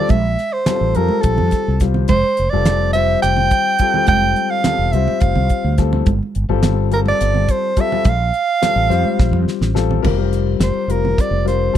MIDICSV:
0, 0, Header, 1, 6, 480
1, 0, Start_track
1, 0, Tempo, 567644
1, 90, Time_signature, 7, 3, 24, 8
1, 9960, End_track
2, 0, Start_track
2, 0, Title_t, "Soprano saxophone"
2, 0, Program_c, 0, 64
2, 0, Note_on_c, 0, 74, 86
2, 87, Note_on_c, 0, 76, 93
2, 99, Note_off_c, 0, 74, 0
2, 444, Note_on_c, 0, 72, 82
2, 457, Note_off_c, 0, 76, 0
2, 810, Note_on_c, 0, 70, 83
2, 823, Note_off_c, 0, 72, 0
2, 1028, Note_on_c, 0, 69, 84
2, 1040, Note_off_c, 0, 70, 0
2, 1580, Note_off_c, 0, 69, 0
2, 1765, Note_on_c, 0, 72, 93
2, 2113, Note_on_c, 0, 74, 93
2, 2125, Note_off_c, 0, 72, 0
2, 2472, Note_off_c, 0, 74, 0
2, 2477, Note_on_c, 0, 76, 94
2, 2708, Note_off_c, 0, 76, 0
2, 2724, Note_on_c, 0, 79, 104
2, 3415, Note_off_c, 0, 79, 0
2, 3453, Note_on_c, 0, 79, 114
2, 3810, Note_on_c, 0, 77, 106
2, 3822, Note_off_c, 0, 79, 0
2, 4162, Note_on_c, 0, 76, 90
2, 4174, Note_off_c, 0, 77, 0
2, 4400, Note_on_c, 0, 77, 89
2, 4413, Note_off_c, 0, 76, 0
2, 4947, Note_off_c, 0, 77, 0
2, 5864, Note_on_c, 0, 70, 73
2, 5915, Note_off_c, 0, 70, 0
2, 5989, Note_on_c, 0, 74, 90
2, 6352, Note_on_c, 0, 72, 81
2, 6365, Note_off_c, 0, 74, 0
2, 6602, Note_on_c, 0, 76, 92
2, 6615, Note_off_c, 0, 72, 0
2, 6845, Note_on_c, 0, 77, 105
2, 6857, Note_off_c, 0, 76, 0
2, 8028, Note_off_c, 0, 77, 0
2, 8994, Note_on_c, 0, 72, 69
2, 9225, Note_on_c, 0, 70, 78
2, 9237, Note_off_c, 0, 72, 0
2, 9476, Note_on_c, 0, 74, 79
2, 9489, Note_off_c, 0, 70, 0
2, 9701, Note_off_c, 0, 74, 0
2, 9706, Note_on_c, 0, 72, 67
2, 9960, Note_off_c, 0, 72, 0
2, 9960, End_track
3, 0, Start_track
3, 0, Title_t, "Grand piano"
3, 0, Program_c, 1, 0
3, 0, Note_on_c, 1, 55, 74
3, 0, Note_on_c, 1, 60, 60
3, 0, Note_on_c, 1, 65, 62
3, 0, Note_on_c, 1, 69, 81
3, 95, Note_off_c, 1, 55, 0
3, 95, Note_off_c, 1, 65, 0
3, 96, Note_off_c, 1, 69, 0
3, 97, Note_off_c, 1, 60, 0
3, 578, Note_on_c, 1, 55, 63
3, 579, Note_on_c, 1, 60, 58
3, 583, Note_on_c, 1, 65, 56
3, 584, Note_on_c, 1, 69, 72
3, 794, Note_off_c, 1, 55, 0
3, 794, Note_off_c, 1, 60, 0
3, 796, Note_off_c, 1, 65, 0
3, 797, Note_off_c, 1, 69, 0
3, 814, Note_on_c, 1, 55, 80
3, 816, Note_on_c, 1, 69, 84
3, 817, Note_on_c, 1, 60, 69
3, 820, Note_on_c, 1, 65, 66
3, 1470, Note_off_c, 1, 55, 0
3, 1471, Note_off_c, 1, 69, 0
3, 1472, Note_off_c, 1, 60, 0
3, 1473, Note_off_c, 1, 65, 0
3, 1532, Note_on_c, 1, 60, 63
3, 1535, Note_on_c, 1, 55, 65
3, 1538, Note_on_c, 1, 65, 61
3, 1539, Note_on_c, 1, 72, 75
3, 1772, Note_off_c, 1, 60, 0
3, 1774, Note_off_c, 1, 55, 0
3, 1775, Note_off_c, 1, 65, 0
3, 1776, Note_off_c, 1, 72, 0
3, 2137, Note_on_c, 1, 55, 77
3, 2139, Note_on_c, 1, 60, 60
3, 2140, Note_on_c, 1, 65, 62
3, 2144, Note_on_c, 1, 69, 84
3, 2463, Note_off_c, 1, 55, 0
3, 2465, Note_off_c, 1, 60, 0
3, 2465, Note_off_c, 1, 65, 0
3, 2467, Note_off_c, 1, 69, 0
3, 2491, Note_on_c, 1, 60, 63
3, 2491, Note_on_c, 1, 65, 67
3, 2492, Note_on_c, 1, 55, 67
3, 2493, Note_on_c, 1, 72, 78
3, 3149, Note_off_c, 1, 55, 0
3, 3149, Note_off_c, 1, 60, 0
3, 3149, Note_off_c, 1, 65, 0
3, 3150, Note_off_c, 1, 72, 0
3, 3215, Note_on_c, 1, 55, 74
3, 3216, Note_on_c, 1, 60, 61
3, 3216, Note_on_c, 1, 65, 69
3, 3221, Note_on_c, 1, 69, 72
3, 3323, Note_off_c, 1, 55, 0
3, 3323, Note_off_c, 1, 60, 0
3, 3323, Note_off_c, 1, 65, 0
3, 3325, Note_off_c, 1, 69, 0
3, 3336, Note_on_c, 1, 55, 71
3, 3336, Note_on_c, 1, 60, 72
3, 3336, Note_on_c, 1, 65, 60
3, 3338, Note_on_c, 1, 69, 72
3, 3882, Note_off_c, 1, 55, 0
3, 3882, Note_off_c, 1, 60, 0
3, 3882, Note_off_c, 1, 65, 0
3, 3883, Note_off_c, 1, 69, 0
3, 3935, Note_on_c, 1, 55, 62
3, 3935, Note_on_c, 1, 60, 50
3, 3936, Note_on_c, 1, 65, 54
3, 3940, Note_on_c, 1, 69, 67
3, 4153, Note_off_c, 1, 55, 0
3, 4153, Note_off_c, 1, 60, 0
3, 4154, Note_off_c, 1, 65, 0
3, 4155, Note_off_c, 1, 69, 0
3, 4179, Note_on_c, 1, 55, 72
3, 4179, Note_on_c, 1, 72, 83
3, 4180, Note_on_c, 1, 65, 76
3, 4182, Note_on_c, 1, 60, 72
3, 4833, Note_off_c, 1, 55, 0
3, 4833, Note_off_c, 1, 65, 0
3, 4833, Note_off_c, 1, 72, 0
3, 4834, Note_off_c, 1, 60, 0
3, 4884, Note_on_c, 1, 60, 65
3, 4887, Note_on_c, 1, 55, 66
3, 4888, Note_on_c, 1, 65, 59
3, 4894, Note_on_c, 1, 69, 78
3, 5129, Note_off_c, 1, 60, 0
3, 5130, Note_off_c, 1, 55, 0
3, 5131, Note_off_c, 1, 65, 0
3, 5134, Note_off_c, 1, 69, 0
3, 5489, Note_on_c, 1, 60, 79
3, 5490, Note_on_c, 1, 55, 87
3, 5490, Note_on_c, 1, 65, 76
3, 5492, Note_on_c, 1, 69, 93
3, 5819, Note_off_c, 1, 60, 0
3, 5820, Note_off_c, 1, 55, 0
3, 5820, Note_off_c, 1, 65, 0
3, 5821, Note_off_c, 1, 69, 0
3, 5846, Note_on_c, 1, 55, 73
3, 5848, Note_on_c, 1, 65, 64
3, 5851, Note_on_c, 1, 69, 85
3, 5852, Note_on_c, 1, 60, 65
3, 6506, Note_off_c, 1, 55, 0
3, 6507, Note_off_c, 1, 65, 0
3, 6509, Note_off_c, 1, 60, 0
3, 6509, Note_off_c, 1, 69, 0
3, 6570, Note_on_c, 1, 60, 67
3, 6571, Note_on_c, 1, 55, 74
3, 6571, Note_on_c, 1, 65, 68
3, 6574, Note_on_c, 1, 69, 77
3, 6681, Note_off_c, 1, 55, 0
3, 6681, Note_off_c, 1, 60, 0
3, 6681, Note_off_c, 1, 65, 0
3, 6683, Note_off_c, 1, 69, 0
3, 6695, Note_on_c, 1, 55, 75
3, 6697, Note_on_c, 1, 60, 63
3, 6700, Note_on_c, 1, 69, 82
3, 6701, Note_on_c, 1, 65, 73
3, 6814, Note_off_c, 1, 55, 0
3, 6815, Note_off_c, 1, 60, 0
3, 6816, Note_off_c, 1, 69, 0
3, 6817, Note_off_c, 1, 65, 0
3, 7285, Note_on_c, 1, 55, 55
3, 7285, Note_on_c, 1, 60, 53
3, 7290, Note_on_c, 1, 69, 70
3, 7292, Note_on_c, 1, 65, 61
3, 7506, Note_off_c, 1, 55, 0
3, 7507, Note_off_c, 1, 60, 0
3, 7510, Note_off_c, 1, 69, 0
3, 7511, Note_off_c, 1, 65, 0
3, 7518, Note_on_c, 1, 55, 82
3, 7522, Note_on_c, 1, 60, 77
3, 7524, Note_on_c, 1, 72, 103
3, 7525, Note_on_c, 1, 65, 81
3, 8182, Note_off_c, 1, 55, 0
3, 8183, Note_off_c, 1, 60, 0
3, 8184, Note_off_c, 1, 72, 0
3, 8185, Note_off_c, 1, 65, 0
3, 8238, Note_on_c, 1, 60, 71
3, 8238, Note_on_c, 1, 65, 74
3, 8240, Note_on_c, 1, 55, 76
3, 8244, Note_on_c, 1, 69, 94
3, 8461, Note_off_c, 1, 60, 0
3, 8464, Note_off_c, 1, 55, 0
3, 8465, Note_off_c, 1, 65, 0
3, 8474, Note_on_c, 1, 60, 75
3, 8477, Note_on_c, 1, 55, 91
3, 8478, Note_on_c, 1, 65, 83
3, 8478, Note_on_c, 1, 70, 103
3, 8488, Note_off_c, 1, 69, 0
3, 8589, Note_off_c, 1, 60, 0
3, 8590, Note_off_c, 1, 55, 0
3, 8592, Note_off_c, 1, 65, 0
3, 8594, Note_off_c, 1, 70, 0
3, 8602, Note_on_c, 1, 55, 78
3, 8602, Note_on_c, 1, 60, 69
3, 8605, Note_on_c, 1, 65, 71
3, 8611, Note_on_c, 1, 70, 76
3, 9153, Note_off_c, 1, 60, 0
3, 9154, Note_off_c, 1, 55, 0
3, 9155, Note_off_c, 1, 65, 0
3, 9158, Note_off_c, 1, 70, 0
3, 9202, Note_on_c, 1, 65, 58
3, 9205, Note_on_c, 1, 55, 65
3, 9205, Note_on_c, 1, 60, 57
3, 9208, Note_on_c, 1, 70, 69
3, 9644, Note_off_c, 1, 65, 0
3, 9645, Note_off_c, 1, 55, 0
3, 9645, Note_off_c, 1, 60, 0
3, 9647, Note_off_c, 1, 70, 0
3, 9679, Note_on_c, 1, 60, 69
3, 9682, Note_on_c, 1, 55, 68
3, 9682, Note_on_c, 1, 65, 60
3, 9683, Note_on_c, 1, 70, 72
3, 9904, Note_off_c, 1, 60, 0
3, 9905, Note_off_c, 1, 55, 0
3, 9905, Note_off_c, 1, 65, 0
3, 9905, Note_off_c, 1, 70, 0
3, 9920, Note_on_c, 1, 55, 71
3, 9922, Note_on_c, 1, 60, 63
3, 9922, Note_on_c, 1, 65, 64
3, 9922, Note_on_c, 1, 69, 71
3, 9960, Note_off_c, 1, 55, 0
3, 9960, Note_off_c, 1, 60, 0
3, 9960, Note_off_c, 1, 65, 0
3, 9960, Note_off_c, 1, 69, 0
3, 9960, End_track
4, 0, Start_track
4, 0, Title_t, "Fretless electric bass"
4, 0, Program_c, 2, 35
4, 82, Note_on_c, 2, 34, 103
4, 296, Note_off_c, 2, 34, 0
4, 682, Note_on_c, 2, 33, 81
4, 791, Note_off_c, 2, 33, 0
4, 810, Note_on_c, 2, 41, 76
4, 916, Note_off_c, 2, 41, 0
4, 1049, Note_on_c, 2, 34, 85
4, 1155, Note_off_c, 2, 34, 0
4, 1181, Note_on_c, 2, 41, 80
4, 1280, Note_off_c, 2, 41, 0
4, 1419, Note_on_c, 2, 36, 81
4, 1731, Note_off_c, 2, 36, 0
4, 1769, Note_on_c, 2, 29, 102
4, 1875, Note_off_c, 2, 29, 0
4, 2022, Note_on_c, 2, 29, 74
4, 2122, Note_off_c, 2, 29, 0
4, 2139, Note_on_c, 2, 29, 97
4, 2661, Note_off_c, 2, 29, 0
4, 2735, Note_on_c, 2, 29, 77
4, 2944, Note_off_c, 2, 29, 0
4, 3449, Note_on_c, 2, 29, 104
4, 3660, Note_off_c, 2, 29, 0
4, 4047, Note_on_c, 2, 28, 73
4, 4155, Note_off_c, 2, 28, 0
4, 4170, Note_on_c, 2, 36, 87
4, 4276, Note_off_c, 2, 36, 0
4, 4411, Note_on_c, 2, 29, 82
4, 4517, Note_off_c, 2, 29, 0
4, 4533, Note_on_c, 2, 36, 88
4, 4638, Note_off_c, 2, 36, 0
4, 4771, Note_on_c, 2, 38, 85
4, 5086, Note_off_c, 2, 38, 0
4, 5127, Note_on_c, 2, 31, 95
4, 5235, Note_off_c, 2, 31, 0
4, 5375, Note_on_c, 2, 31, 80
4, 5479, Note_off_c, 2, 31, 0
4, 5485, Note_on_c, 2, 31, 91
4, 6013, Note_off_c, 2, 31, 0
4, 6096, Note_on_c, 2, 31, 83
4, 6304, Note_off_c, 2, 31, 0
4, 6806, Note_on_c, 2, 34, 93
4, 7018, Note_off_c, 2, 34, 0
4, 7404, Note_on_c, 2, 33, 83
4, 7512, Note_off_c, 2, 33, 0
4, 7527, Note_on_c, 2, 41, 85
4, 7634, Note_off_c, 2, 41, 0
4, 7770, Note_on_c, 2, 34, 75
4, 7869, Note_off_c, 2, 34, 0
4, 7874, Note_on_c, 2, 41, 84
4, 7984, Note_off_c, 2, 41, 0
4, 8124, Note_on_c, 2, 33, 77
4, 8442, Note_off_c, 2, 33, 0
4, 8496, Note_on_c, 2, 29, 88
4, 8913, Note_off_c, 2, 29, 0
4, 8960, Note_on_c, 2, 29, 99
4, 9069, Note_off_c, 2, 29, 0
4, 9196, Note_on_c, 2, 29, 76
4, 9412, Note_off_c, 2, 29, 0
4, 9559, Note_on_c, 2, 29, 78
4, 9879, Note_off_c, 2, 29, 0
4, 9934, Note_on_c, 2, 39, 89
4, 9960, Note_off_c, 2, 39, 0
4, 9960, End_track
5, 0, Start_track
5, 0, Title_t, "Muted fretless electric bass strokes"
5, 929, Note_on_c, 9, 29, 36
5, 1014, Note_off_c, 9, 29, 0
5, 1285, Note_on_c, 9, 29, 35
5, 1369, Note_off_c, 9, 29, 0
5, 4297, Note_on_c, 9, 29, 34
5, 4381, Note_off_c, 9, 29, 0
5, 4646, Note_on_c, 9, 29, 34
5, 4731, Note_off_c, 9, 29, 0
5, 7645, Note_on_c, 9, 29, 37
5, 7730, Note_off_c, 9, 29, 0
5, 7989, Note_on_c, 9, 29, 36
5, 8073, Note_off_c, 9, 29, 0
5, 9960, End_track
6, 0, Start_track
6, 0, Title_t, "Drums"
6, 77, Note_on_c, 9, 42, 69
6, 78, Note_on_c, 9, 63, 82
6, 85, Note_on_c, 9, 36, 98
6, 161, Note_off_c, 9, 42, 0
6, 162, Note_off_c, 9, 63, 0
6, 170, Note_off_c, 9, 36, 0
6, 328, Note_on_c, 9, 38, 30
6, 328, Note_on_c, 9, 42, 46
6, 412, Note_off_c, 9, 38, 0
6, 412, Note_off_c, 9, 42, 0
6, 560, Note_on_c, 9, 38, 112
6, 560, Note_on_c, 9, 42, 79
6, 563, Note_on_c, 9, 64, 93
6, 645, Note_off_c, 9, 38, 0
6, 645, Note_off_c, 9, 42, 0
6, 648, Note_off_c, 9, 64, 0
6, 686, Note_on_c, 9, 64, 30
6, 771, Note_off_c, 9, 64, 0
6, 801, Note_on_c, 9, 42, 60
6, 885, Note_off_c, 9, 42, 0
6, 918, Note_on_c, 9, 63, 65
6, 1002, Note_off_c, 9, 63, 0
6, 1042, Note_on_c, 9, 42, 80
6, 1048, Note_on_c, 9, 36, 101
6, 1127, Note_off_c, 9, 42, 0
6, 1133, Note_off_c, 9, 36, 0
6, 1165, Note_on_c, 9, 64, 73
6, 1250, Note_off_c, 9, 64, 0
6, 1278, Note_on_c, 9, 38, 31
6, 1278, Note_on_c, 9, 42, 63
6, 1287, Note_on_c, 9, 36, 62
6, 1363, Note_off_c, 9, 38, 0
6, 1363, Note_off_c, 9, 42, 0
6, 1372, Note_off_c, 9, 36, 0
6, 1521, Note_on_c, 9, 38, 35
6, 1521, Note_on_c, 9, 42, 67
6, 1529, Note_on_c, 9, 36, 71
6, 1606, Note_off_c, 9, 38, 0
6, 1606, Note_off_c, 9, 42, 0
6, 1613, Note_off_c, 9, 36, 0
6, 1644, Note_on_c, 9, 64, 64
6, 1728, Note_off_c, 9, 64, 0
6, 1758, Note_on_c, 9, 42, 77
6, 1767, Note_on_c, 9, 63, 86
6, 1768, Note_on_c, 9, 36, 100
6, 1842, Note_off_c, 9, 42, 0
6, 1851, Note_off_c, 9, 63, 0
6, 1853, Note_off_c, 9, 36, 0
6, 2004, Note_on_c, 9, 42, 58
6, 2088, Note_off_c, 9, 42, 0
6, 2244, Note_on_c, 9, 38, 112
6, 2244, Note_on_c, 9, 42, 90
6, 2252, Note_on_c, 9, 64, 92
6, 2329, Note_off_c, 9, 38, 0
6, 2329, Note_off_c, 9, 42, 0
6, 2336, Note_off_c, 9, 64, 0
6, 2482, Note_on_c, 9, 42, 63
6, 2567, Note_off_c, 9, 42, 0
6, 2728, Note_on_c, 9, 38, 30
6, 2728, Note_on_c, 9, 42, 81
6, 2813, Note_off_c, 9, 38, 0
6, 2813, Note_off_c, 9, 42, 0
6, 2847, Note_on_c, 9, 64, 67
6, 2932, Note_off_c, 9, 64, 0
6, 2966, Note_on_c, 9, 42, 54
6, 2971, Note_on_c, 9, 36, 73
6, 3050, Note_off_c, 9, 42, 0
6, 3055, Note_off_c, 9, 36, 0
6, 3202, Note_on_c, 9, 42, 62
6, 3210, Note_on_c, 9, 36, 74
6, 3286, Note_off_c, 9, 42, 0
6, 3295, Note_off_c, 9, 36, 0
6, 3331, Note_on_c, 9, 64, 67
6, 3416, Note_off_c, 9, 64, 0
6, 3439, Note_on_c, 9, 42, 80
6, 3447, Note_on_c, 9, 63, 89
6, 3451, Note_on_c, 9, 36, 92
6, 3523, Note_off_c, 9, 42, 0
6, 3532, Note_off_c, 9, 63, 0
6, 3535, Note_off_c, 9, 36, 0
6, 3575, Note_on_c, 9, 64, 28
6, 3660, Note_off_c, 9, 64, 0
6, 3688, Note_on_c, 9, 42, 46
6, 3773, Note_off_c, 9, 42, 0
6, 3925, Note_on_c, 9, 38, 115
6, 3925, Note_on_c, 9, 42, 82
6, 3929, Note_on_c, 9, 64, 98
6, 4009, Note_off_c, 9, 38, 0
6, 4009, Note_off_c, 9, 42, 0
6, 4013, Note_off_c, 9, 64, 0
6, 4169, Note_on_c, 9, 42, 51
6, 4254, Note_off_c, 9, 42, 0
6, 4293, Note_on_c, 9, 63, 57
6, 4378, Note_off_c, 9, 63, 0
6, 4401, Note_on_c, 9, 42, 77
6, 4411, Note_on_c, 9, 36, 106
6, 4486, Note_off_c, 9, 42, 0
6, 4495, Note_off_c, 9, 36, 0
6, 4528, Note_on_c, 9, 64, 66
6, 4613, Note_off_c, 9, 64, 0
6, 4646, Note_on_c, 9, 42, 58
6, 4651, Note_on_c, 9, 36, 66
6, 4730, Note_off_c, 9, 42, 0
6, 4736, Note_off_c, 9, 36, 0
6, 4886, Note_on_c, 9, 38, 34
6, 4886, Note_on_c, 9, 42, 61
6, 4890, Note_on_c, 9, 36, 74
6, 4970, Note_off_c, 9, 38, 0
6, 4970, Note_off_c, 9, 42, 0
6, 4975, Note_off_c, 9, 36, 0
6, 5011, Note_on_c, 9, 64, 73
6, 5096, Note_off_c, 9, 64, 0
6, 5124, Note_on_c, 9, 42, 74
6, 5129, Note_on_c, 9, 36, 109
6, 5130, Note_on_c, 9, 63, 79
6, 5209, Note_off_c, 9, 42, 0
6, 5214, Note_off_c, 9, 36, 0
6, 5215, Note_off_c, 9, 63, 0
6, 5265, Note_on_c, 9, 64, 26
6, 5350, Note_off_c, 9, 64, 0
6, 5370, Note_on_c, 9, 42, 56
6, 5454, Note_off_c, 9, 42, 0
6, 5604, Note_on_c, 9, 38, 102
6, 5604, Note_on_c, 9, 42, 87
6, 5609, Note_on_c, 9, 64, 82
6, 5688, Note_off_c, 9, 38, 0
6, 5688, Note_off_c, 9, 42, 0
6, 5693, Note_off_c, 9, 64, 0
6, 5848, Note_on_c, 9, 42, 63
6, 5932, Note_off_c, 9, 42, 0
6, 5967, Note_on_c, 9, 63, 55
6, 6051, Note_off_c, 9, 63, 0
6, 6093, Note_on_c, 9, 38, 31
6, 6093, Note_on_c, 9, 42, 89
6, 6178, Note_off_c, 9, 38, 0
6, 6178, Note_off_c, 9, 42, 0
6, 6212, Note_on_c, 9, 64, 56
6, 6296, Note_off_c, 9, 64, 0
6, 6329, Note_on_c, 9, 42, 59
6, 6331, Note_on_c, 9, 36, 69
6, 6414, Note_off_c, 9, 42, 0
6, 6415, Note_off_c, 9, 36, 0
6, 6567, Note_on_c, 9, 42, 70
6, 6570, Note_on_c, 9, 36, 76
6, 6652, Note_off_c, 9, 42, 0
6, 6654, Note_off_c, 9, 36, 0
6, 6700, Note_on_c, 9, 64, 52
6, 6784, Note_off_c, 9, 64, 0
6, 6804, Note_on_c, 9, 42, 77
6, 6810, Note_on_c, 9, 36, 107
6, 6813, Note_on_c, 9, 63, 77
6, 6813, Note_on_c, 9, 64, 21
6, 6889, Note_off_c, 9, 42, 0
6, 6894, Note_off_c, 9, 36, 0
6, 6897, Note_off_c, 9, 63, 0
6, 6897, Note_off_c, 9, 64, 0
6, 7051, Note_on_c, 9, 42, 45
6, 7136, Note_off_c, 9, 42, 0
6, 7293, Note_on_c, 9, 64, 79
6, 7294, Note_on_c, 9, 38, 101
6, 7294, Note_on_c, 9, 42, 82
6, 7378, Note_off_c, 9, 64, 0
6, 7379, Note_off_c, 9, 38, 0
6, 7379, Note_off_c, 9, 42, 0
6, 7538, Note_on_c, 9, 38, 36
6, 7538, Note_on_c, 9, 42, 56
6, 7623, Note_off_c, 9, 38, 0
6, 7623, Note_off_c, 9, 42, 0
6, 7645, Note_on_c, 9, 63, 50
6, 7645, Note_on_c, 9, 64, 24
6, 7730, Note_off_c, 9, 63, 0
6, 7730, Note_off_c, 9, 64, 0
6, 7772, Note_on_c, 9, 38, 65
6, 7775, Note_on_c, 9, 36, 104
6, 7856, Note_off_c, 9, 38, 0
6, 7860, Note_off_c, 9, 36, 0
6, 7889, Note_on_c, 9, 64, 66
6, 7974, Note_off_c, 9, 64, 0
6, 8015, Note_on_c, 9, 38, 66
6, 8100, Note_off_c, 9, 38, 0
6, 8132, Note_on_c, 9, 38, 69
6, 8216, Note_off_c, 9, 38, 0
6, 8253, Note_on_c, 9, 38, 85
6, 8258, Note_on_c, 9, 64, 28
6, 8337, Note_off_c, 9, 38, 0
6, 8342, Note_off_c, 9, 64, 0
6, 8377, Note_on_c, 9, 64, 75
6, 8462, Note_off_c, 9, 64, 0
6, 8494, Note_on_c, 9, 49, 90
6, 8494, Note_on_c, 9, 63, 87
6, 8494, Note_on_c, 9, 64, 92
6, 8495, Note_on_c, 9, 36, 94
6, 8578, Note_off_c, 9, 49, 0
6, 8579, Note_off_c, 9, 36, 0
6, 8579, Note_off_c, 9, 63, 0
6, 8579, Note_off_c, 9, 64, 0
6, 8734, Note_on_c, 9, 38, 26
6, 8734, Note_on_c, 9, 42, 49
6, 8818, Note_off_c, 9, 38, 0
6, 8818, Note_off_c, 9, 42, 0
6, 8968, Note_on_c, 9, 38, 103
6, 8968, Note_on_c, 9, 42, 73
6, 8984, Note_on_c, 9, 64, 31
6, 9052, Note_off_c, 9, 38, 0
6, 9052, Note_off_c, 9, 42, 0
6, 9068, Note_off_c, 9, 64, 0
6, 9214, Note_on_c, 9, 42, 64
6, 9299, Note_off_c, 9, 42, 0
6, 9342, Note_on_c, 9, 63, 54
6, 9342, Note_on_c, 9, 64, 64
6, 9426, Note_off_c, 9, 63, 0
6, 9426, Note_off_c, 9, 64, 0
6, 9455, Note_on_c, 9, 64, 26
6, 9456, Note_on_c, 9, 36, 99
6, 9459, Note_on_c, 9, 38, 32
6, 9459, Note_on_c, 9, 42, 71
6, 9540, Note_off_c, 9, 64, 0
6, 9541, Note_off_c, 9, 36, 0
6, 9544, Note_off_c, 9, 38, 0
6, 9544, Note_off_c, 9, 42, 0
6, 9565, Note_on_c, 9, 64, 27
6, 9650, Note_off_c, 9, 64, 0
6, 9704, Note_on_c, 9, 38, 31
6, 9704, Note_on_c, 9, 42, 59
6, 9789, Note_off_c, 9, 38, 0
6, 9789, Note_off_c, 9, 42, 0
6, 9960, End_track
0, 0, End_of_file